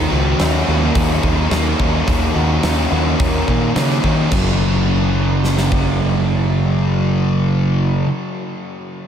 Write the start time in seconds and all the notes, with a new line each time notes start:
Already playing: D#3
0.09 C#2 F#4
0.38 D#2 C#4, snare, open hi-hat
0.66 D#2 A#3
0.95 D#2 C#4, kick, open hi-hat
1.21 D#2 D#3, kick
1.50 D#2 A#3, snare, open hi-hat
1.78 D#2 C#4, kick
2.06 D#2 D#3, kick, open hi-hat
2.35 D#2 F#4
2.63 D#2 C#4, snare, open hi-hat
2.92 D#2 A#3
3.20 D#2 C#4, kick, open hi-hat
3.48 A#2 D#3, kick
3.76 C#3 A#3, snare, open hi-hat
3.90 snare
4.04 D#3 C#4, kick
4.30 F#1 F#2 C#3, kick, crash
4.35 F#3
5.44 snare
5.58 snare
5.72 kick